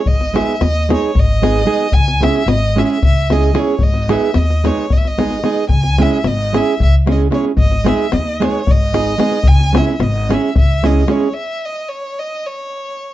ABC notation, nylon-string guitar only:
X:1
M:7/8
L:1/8
Q:1/4=112
K:C#m
V:1 name="Nylon-string guitar"
z [G,B,DG] z [G,B,DG] z [G,B,DG] [G,B,DG] | z [G,CEG] z [G,CEG] z [G,CEG] [G,CEG] | z [G,B,DG] z [G,B,DG] z [G,B,DG] [G,B,DG] | z [G,CEG] z [G,CEG] z [G,CEG] [G,CEG] |
z [G,B,DG] z [G,B,DG] z [G,B,DG] [G,B,DG] | z [G,CEG] z [G,CEG] z [G,CEG] [G,CEG] | z6 z |]